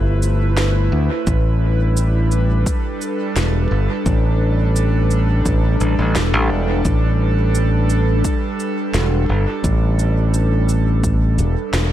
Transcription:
Already playing: fingered electric bass G1, analog synth pad A3 E4 B4 C5
0.22 shaker
0.57 snare, shaker
0.92 fingered electric bass D2
1.27 fingered electric bass A1, analog synth pad G3, kick, shaker
1.45 analog synth pad D4
1.97 shaker
2.32 shaker
2.37 analog synth pad A4
2.66 kick, shaker
3.01 shaker
3.36 fingered electric bass E1, snare, shaker
3.71 fingered electric bass G1
4.06 fingered electric bass A1, kick, shaker
4.76 shaker
5.11 shaker
5.46 fingered electric bass A1, kick, shaker
5.81 fingered electric bass A1, shaker
5.99 fingered electric bass A1
6.15 fingered electric bass E1, snare, shaker
6.33 fingered electric bass A1
6.50 fingered electric bass E1
6.85 fingered electric bass A1, kick, shaker
7.55 shaker
7.90 shaker
8.25 kick, shaker
8.60 shaker
8.94 fingered electric bass E1, snare, shaker
9.29 fingered electric bass G1
9.64 fingered electric bass A1, kick, shaker
9.99 shaker
10.34 shaker
10.69 shaker
11.04 kick, shaker
11.38 fingered electric bass E1, shaker
11.73 fingered electric bass E1, snare, shaker

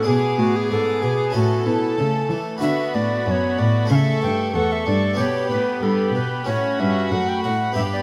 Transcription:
0.03 harpsichord D4 G#4
0.07 cello section B2, harpsichord B2, viola section B3, recorder G#4, violin section G#4 D6
0.39 harpsichord A2, cello section A2, recorder F#4
0.56 recorder G#4
0.71 harpsichord G#2, cello section G#2, recorder A4
1.02 harpsichord B2, cello section B2, recorder G#4
1.30 harpsichord C#4 E4 A4
1.35 cello section A2, harpsichord A2, recorder F#4, violin section A4 A5
1.66 harpsichord B2, cello section B2, recorder E4
1.98 harpsichord C#3, cello section C#3, viola section A3
2.30 cello section E3, harpsichord E3
2.58 harpsichord D4 F#4 B4, recorder E5
2.62 harpsichord D3, cello section D3, viola section B3, violin section F#4 B5
2.94 harpsichord A2, cello section A2, recorder D5
3.26 harpsichord F#2, cello section F#2, viola section B3, recorder D5
3.31 recorder C#5
3.58 harpsichord A2, cello section A2, recorder D5
3.85 harpsichord A3 E4 A4
3.90 harpsichord C#3, cello section C#3, viola section A3, violin section A4 C#6, recorder F5
3.95 recorder E5
4.22 harpsichord G2, cello section G2, recorder G5
4.54 harpsichord E2, cello section E2, viola section A3, violin section A4 C#6, recorder F#5
4.72 recorder E5
4.86 harpsichord G2, cello section G2, recorder D5
5.13 harpsichord B3 D4 G4
5.18 harpsichord B2, cello section B2, viola section B3, violin section G4 B5, recorder C#5
5.51 harpsichord A2, cello section A2, recorder B4
5.82 cello section G2, harpsichord G2, violin section G4 B5, recorder A4
6.15 cello section B2, harpsichord B2, recorder B4
6.45 cello section A2, harpsichord A2 C#4 F#4, viola section C#4, violin section F#4, recorder C#5
6.79 cello section G2, harpsichord G2, recorder E5
7.12 cello section F#2, harpsichord F#2, viola section A3, recorder F#5
7.29 recorder G5
7.43 cello section A2, harpsichord A2, recorder F#5
7.72 cello section G2, harpsichord B3 D4 G4, recorder E5
7.76 harpsichord G2, viola section B3, violin section G4
7.93 recorder D5

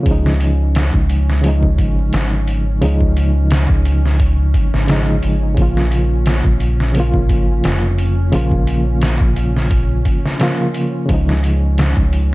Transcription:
Already playing: synth drone C#4
0.03 fingered electric bass C#2, reed electric piano C#3 F3, kick, open hi-hat
0.08 reed electric piano G#3 D#4
0.26 snare
0.40 open hi-hat
0.75 snare, open hi-hat
0.94 fingered electric bass C#2, kick
1.09 open hi-hat
1.30 snare
1.41 reed electric piano C#3 F3, open hi-hat
1.46 reed electric piano G#3 D#4
1.63 kick
1.78 fingered electric bass G#1, kick, open hi-hat
2.13 fingered electric bass G#1, snare, open hi-hat
2.47 open hi-hat
2.81 fingered electric bass C#2, reed electric piano C#3 F3 G#3 D#4, open hi-hat
3.01 kick
3.17 open hi-hat
3.51 snare, open hi-hat
3.70 fingered electric bass C#2, kick
3.85 open hi-hat
4.05 snare
4.20 kick, open hi-hat
4.54 fingered electric bass G#1, kick, open hi-hat
4.74 fingered electric bass G#1, snare
4.88 reed electric piano C#3 F3 G#3 D#4, snare, open hi-hat
5.23 fingered electric bass G#1, open hi-hat
5.54 fingered electric bass A#1, reed electric piano C#3 F3, kick, open hi-hat
5.59 reed electric piano A#3 F4
5.77 snare
5.92 open hi-hat
6.26 snare, open hi-hat
6.45 fingered electric bass A#1, kick
6.60 open hi-hat
6.80 snare
6.92 reed electric piano C#3 F3, open hi-hat
6.97 reed electric piano A#3 F4
7.14 kick
7.29 fingered electric bass G#1, kick, open hi-hat
7.64 fingered electric bass F1, snare, open hi-hat
7.98 open hi-hat
8.32 fingered electric bass A#1, reed electric piano C#3 F3 A#3 F4, open hi-hat
8.52 kick
8.67 open hi-hat
9.02 snare, open hi-hat
9.21 fingered electric bass A#1, kick
9.36 open hi-hat
9.56 snare
9.71 kick, open hi-hat
10.05 kick, open hi-hat
10.25 snare
10.39 reed electric piano C#3 F3 A#3 F4, snare, open hi-hat
10.74 open hi-hat
11.06 fingered electric bass C#2, reed electric piano C#3 F3, kick, open hi-hat
11.11 reed electric piano G#3 D#4
11.29 snare
11.44 open hi-hat
11.78 snare, open hi-hat
11.97 fingered electric bass C#2, kick
12.13 open hi-hat

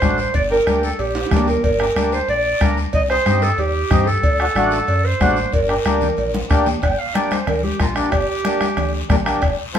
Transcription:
Already playing: clarinet C5
0.02 analog synth bass A1, accordion A3 D4 F#4, bombo low, bombo rim, high conga, short guiro
0.18 clarinet C5, short guiro
0.34 analog synth bass G1, clarinet D5, bombo low, cowbell, high conga, long guiro
0.50 accordion A#3 D4 G4, clarinet A#4
0.66 analog synth bass D2, accordion A#3 D4 G4, bombo rim, high conga, short guiro
0.83 clarinet A4, short guiro
0.99 analog synth bass A#1, clarinet G4, cowbell, high conga, long guiro
1.15 high timbale
1.26 high timbale
1.31 analog synth bass D2, accordion A#3 D4 G4, bombo low, bombo rim, high conga, low conga, short guiro
1.37 low timbale
1.48 clarinet A#4, low timbale, short guiro
1.64 analog synth bass G1, clarinet A#4, bombo low, cowbell, high conga, long guiro
1.80 accordion A#3 D4 G4, bombo rim
1.96 analog synth bass D2, accordion A#3 D4 G4, bombo rim, high conga, short guiro
2.12 clarinet C5, short guiro
2.28 analog synth bass A#1, clarinet D5, cowbell, high conga, long guiro
2.61 analog synth bass D2, accordion A#3 D4 A#4, bombo low, bombo rim, high conga, short guiro
2.77 short guiro
2.93 analog synth bass C2, clarinet D#5, bombo low, cowbell, high conga, long guiro
3.09 accordion C4 D#4 G4, clarinet C5, bombo rim
3.26 analog synth bass G2, accordion C4 D#4 G4, bombo rim, high conga, short guiro
3.42 clarinet A4, short guiro
3.58 analog synth bass D#2, clarinet G4, cowbell, high conga, long guiro
3.91 analog synth bass G2, accordion C4 D#4 G4, bombo low, bombo rim, high conga, low conga, short guiro
4.07 clarinet A4, short guiro
4.23 analog synth bass D2, bombo low, cowbell, high conga, long guiro
4.39 accordion A3 D4 F#4, bombo rim
4.55 analog synth bass A1, accordion A3 D4 F#4, bombo rim, high conga, short guiro
4.71 clarinet A4, short guiro
4.88 analog synth bass F#2, cowbell, high conga, long guiro
5.05 clarinet C5
5.20 analog synth bass A1, accordion A3 D4 F#4, bombo low, bombo rim, high conga, low timbale, short guiro
5.36 short guiro
5.53 analog synth bass G1, clarinet A#4, bombo low, cowbell, high conga, long guiro
5.69 accordion A#3 D4 G4, bombo rim
5.85 analog synth bass D2, accordion A#3 D4 G4, bombo rim, high conga, short guiro
6.01 low conga, short guiro
6.17 analog synth bass A#1, cowbell, high conga, long guiro
6.34 high conga, high timbale
6.50 analog synth bass D2, accordion A#3 D4 G4, bombo low, bombo rim, short guiro
6.66 low conga, low timbale, short guiro
6.82 analog synth bass G1, clarinet G5, bombo low, bombo rim, cowbell, high conga, long guiro
6.99 clarinet F5
7.14 accordion A#3 D4 G4, clarinet D5, bombo rim, high conga, short guiro
7.31 clarinet C5, bombo rim, high conga, short guiro
7.47 analog synth bass D2, clarinet A#4, bombo rim, cowbell, high conga, low conga, long guiro
7.63 clarinet G4, high conga
7.80 analog synth bass A#1, accordion A#3 D4 A#4, clarinet F4, bombo low, bombo rim, high conga, short guiro
7.96 accordion A#3 D4 G4, clarinet D4, bombo rim, short guiro
8.11 analog synth bass G1, clarinet G4, bombo low, bombo rim, cowbell, high conga, long guiro
8.44 accordion A#3 D4 G4, bombo rim, high conga, short guiro
8.61 bombo rim, high conga, short guiro
8.77 analog synth bass D2, bombo rim, cowbell, high conga, low conga, long guiro
9.10 analog synth bass A#1, accordion A#3 D4 G4, bombo low, bombo rim, high conga, low conga, low timbale, short guiro
9.25 accordion A#3 D4 G4, bombo rim, short guiro
9.42 analog synth bass F1, bombo low, bombo rim, cowbell, high conga, long guiro
9.74 accordion C4 F4 A4, bombo rim, high conga, short guiro

